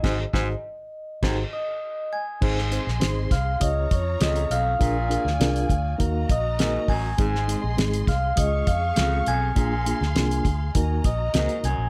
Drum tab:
CC |x-------x-------|x---------------|----------------|----------------|
HH |----------------|--x-x-x-x-x-xxx-|x-x-xxx-x-x-x-o-|x-x-xxx-x-x-x-x-|
SD |o-o-----o-------|-o-oo-o-----o---|---oo-------o---|-o--o-o-----o---|
BD |o-o-----o-------|o-----o-o-o-----|o-----o-o-o---o-|o-----o-o-o-----|

CC |----------------|
HH |x-x-xxx-x-x-xxx-|
SD |---oo-------o---|
BD |o-----o-o-o-----|